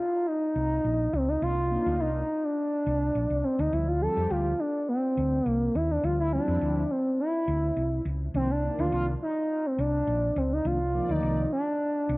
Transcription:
Already playing: analog synth lead F4
0.27 analog synth lead D#4
0.56 fingered electric bass C2
0.85 fingered electric bass A#1
1.13 fingered electric bass C#2, analog synth lead C4
1.29 analog synth lead D#4
1.42 fingered electric bass C2, analog polysynth A#3 D4 D#4 F4, analog synth lead F4
1.70 analog polysynth A#3 D4 D#4 F4
1.86 fingered electric bass D2
2.00 fingered electric bass C2, analog synth lead D#4
2.44 analog synth lead D4
2.86 fingered electric bass C2
3.15 fingered electric bass A#1
3.30 fingered electric bass C2
3.44 analog synth lead C4
3.59 fingered electric bass D2, analog synth lead D#4
3.72 fingered electric bass D2, analog polysynth F3 G3 C4 E4, analog synth lead E4
3.88 analog synth lead F4
4.01 analog polysynth F3 G3 C4 G4, analog synth lead A4
4.17 fingered electric bass F2
4.30 fingered electric bass D2, analog synth lead F4
4.59 analog synth lead D4
4.89 analog synth lead C4
5.17 fingered electric bass D2
5.46 fingered electric bass C2, analog synth lead A#3
5.75 fingered electric bass D#2, analog synth lead E4
5.91 analog synth lead D4
6.03 fingered electric bass D2, analog polysynth F3 G3 C4 F4, analog synth lead F4
6.19 analog synth lead E4
6.32 analog polysynth F3 G3 C4 E4, analog synth lead D4
6.48 fingered electric bass F2
6.61 fingered electric bass D2
6.91 analog synth lead C4
7.19 analog synth lead E4
7.48 fingered electric bass D2
7.76 fingered electric bass C2
8.05 fingered electric bass C#2
8.34 fingered electric bass C2, analog polysynth D#3 F3 A#3 D4, analog synth lead C4
8.51 analog synth lead D4
8.63 analog polysynth D#3 F3 A#3 D4
8.78 fingered electric bass D2, analog synth lead F4
8.92 fingered electric bass C2, analog synth lead F4
9.22 analog synth lead D#4
9.66 analog synth lead C4
9.79 fingered electric bass C2, analog synth lead D4
10.07 fingered electric bass A#1
10.36 fingered electric bass C#2, analog synth lead C4
10.53 analog synth lead D#4
10.65 fingered electric bass C2, analog polysynth D#3 F3 A#3 D4, analog synth lead F4
10.94 analog polysynth D#3 F3 A#3 D5
11.09 fingered electric bass D2, analog synth lead D#4
11.23 fingered electric bass C2
11.53 analog synth lead D4
12.09 fingered electric bass C2

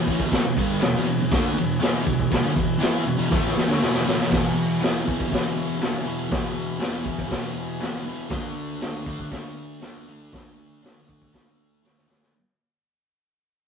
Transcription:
Already playing: transistor combo organ G#4 B4 E5
0.07 distorted electric guitar A2 E3, kick, ride
0.20 distorted electric guitar E2 B2, kick
0.32 distorted electric guitar E2 B2, transistor combo organ G#4 B4 F#5, kick, snare, ride
0.46 distorted electric guitar E2 B2
0.57 distorted electric guitar G2 D3 G3, kick, ride
0.81 distorted electric guitar E2 B2, snare, clap, ride
0.96 distorted electric guitar E2 B2
1.06 distorted electric guitar E2 B2, ride
1.20 distorted electric guitar E2 B2
1.31 distorted electric guitar D3 A3 D4, kick, snare, ride
1.58 distorted electric guitar E2 B2, ride
1.80 distorted electric guitar E2 B2 E3, snare, clap, ride
2.06 distorted electric guitar E2 B2, kick, ride
2.19 kick
2.31 distorted electric guitar E2 B2, kick, snare, ride
2.42 distorted electric guitar G2 D3
2.55 distorted electric guitar E2 B2, kick, ride
2.79 distorted electric guitar E3 B3 E4, snare, clap, ride
3.05 distorted electric guitar E2 B2, clap, ride
3.17 distorted electric guitar E2 B2
3.31 distorted electric guitar A2 E3 A3, kick, snare
3.46 snare
3.56 distorted electric guitar E2 B2, transistor combo organ F#5, snare
3.68 distorted electric guitar D3 A3, transistor combo organ G#5, snare
3.80 distorted electric guitar E2 B2 E3, transistor combo organ G#5, snare, clap
3.94 snare
4.06 distorted electric guitar A2 E3, transistor combo organ B5, snare
4.17 distorted electric guitar E2 B2
4.22 snare
4.30 distorted electric guitar E2 B2 E3, transistor combo organ G#4 B4 E5, kick, snare, crash
4.80 distorted electric guitar E2 B2 E3, snare, clap, open hi-hat
5.05 distorted electric guitar E2 B2 E3, kick
5.20 kick
5.29 distorted electric guitar E2 B2 E3, kick
5.33 snare, open hi-hat
5.79 distorted electric guitar E2 B2 E3, snare, clap, open hi-hat
6.04 distorted electric guitar E2 B2 E3
6.30 distorted electric guitar E2 B2 E3, kick, snare, open hi-hat
6.79 distorted electric guitar E2 B2 E3, snare, clap, open hi-hat
7.04 distorted electric guitar E2 B2 E3, kick
7.19 kick
7.28 distorted electric guitar E2 B2 E3, kick, snare, open hi-hat
7.58 transistor combo organ B5
7.67 transistor combo organ G#5
7.81 distorted electric guitar E2 B2 E3, transistor combo organ F#5, snare, clap, open hi-hat
8.05 distorted electric guitar E2 B2 E3, transistor combo organ E5
8.30 distorted electric guitar D3 A3 D4, kick, snare, open hi-hat
8.81 distorted electric guitar D3 A3 D4, snare, open hi-hat
9.06 distorted electric guitar D3 A3 D4, kick
9.19 kick
9.31 distorted electric guitar D3 A3 D4, kick, snare, open hi-hat
9.81 distorted electric guitar D3 A3 D4, snare, open hi-hat
10.08 distorted electric guitar D3 A3 D4
10.33 distorted electric guitar D3 A3 D4, kick, snare, open hi-hat
10.83 distorted electric guitar D3 A3 D4, snare, open hi-hat
11.08 distorted electric guitar D3 A3 D4, kick
11.22 kick
11.33 distorted electric guitar D3 A3 D4, kick, snare, open hi-hat
11.83 distorted electric guitar D3 A3 D4, snare
11.97 snare
12.09 distorted electric guitar D3 A3 D4, snare
12.22 snare

